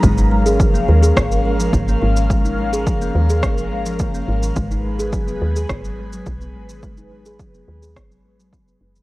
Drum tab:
SH |xx-xxx-xxx-xxx-x|xx-xxx-xxx-xxx-x|xx-xxx-xxx-xxx-x|xx-xxx-xxx-xxx-x|
SD |--------r-------|--------r-------|--------r-------|--------r-------|
BD |o---o---o---o---|o---o---o---o---|o---o---o---o---|o---o---o---o---|